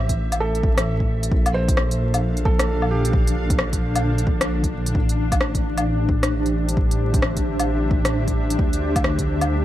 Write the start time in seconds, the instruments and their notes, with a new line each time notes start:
Already playing: detuned saw bass A1, felt piano G4 C5 E5, ambient pad E5
0.09 kick, closed hi-hat
0.32 closed hi-hat, low woodblock
0.40 felt piano A4
0.55 closed hi-hat
0.63 kick
0.78 cross-stick, closed hi-hat
1.00 kick
1.23 closed hi-hat
1.32 detuned saw bass A#1, ambient pad D4, kick
1.46 ambient pad F5, closed hi-hat, low woodblock
1.54 felt piano C5
1.68 kick, closed hi-hat
1.77 cross-stick
1.91 closed hi-hat
2.14 closed hi-hat, low woodblock
2.37 closed hi-hat
2.45 felt piano A4, kick
2.59 cross-stick, closed hi-hat
2.82 low woodblock
2.91 felt piano G4
3.05 closed hi-hat
3.13 kick
3.27 closed hi-hat
3.50 kick, closed hi-hat
3.59 cross-stick
3.73 kick, closed hi-hat
3.96 closed hi-hat, low woodblock
4.18 closed hi-hat
4.27 kick
4.41 cross-stick, closed hi-hat
4.64 kick, closed hi-hat
4.86 closed hi-hat
4.95 detuned saw bass A1, kick
5.07 ambient pad G4, closed hi-hat
5.32 ambient pad C5, kick, closed hi-hat, low woodblock
5.40 ambient pad E5, cross-stick
5.55 kick, closed hi-hat
5.78 closed hi-hat, low woodblock
6.09 kick
6.23 cross-stick, closed hi-hat
6.46 closed hi-hat
6.69 closed hi-hat
6.77 kick
6.91 closed hi-hat
7.14 kick, closed hi-hat
7.22 cross-stick
7.37 kick, closed hi-hat
7.59 closed hi-hat, low woodblock
7.91 kick
8.05 cross-stick, closed hi-hat
8.28 kick, closed hi-hat
8.50 closed hi-hat
8.59 detuned saw bass D2, kick
8.73 closed hi-hat
8.96 kick, closed hi-hat, low woodblock
9.04 cross-stick
9.19 kick, closed hi-hat
9.41 closed hi-hat, low woodblock